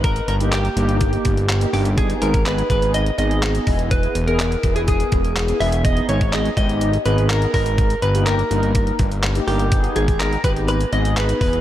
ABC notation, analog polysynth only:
X:1
M:4/4
L:1/16
Q:1/4=124
K:G#m
V:1 name="Analog polysynth"
z3 [A,D=G]2 z [A,DG]4- [A,DG] z2 [A,DG] [A,DG] z | [B,DG]3 z [B,DG] z [B,DG]3 z [B,DG]4 [B,EG]2- | [B,EG]2 z [B,EG]2 z [B,EG]4- [B,EG] z2 [B,EG] [B,EG] z | [B,DG]3 z [B,DG] z [B,D=G]3 z [B,D^G]4- [B,DG] z |
z3 [A,D=G]2 z [A,DA]4- [A,DA] z2 [A,DG] [A,DA] z | [B,DG]3 z [B,DG] z [B,D=G]3 z [B,D^G]4 [B,EG]2 |]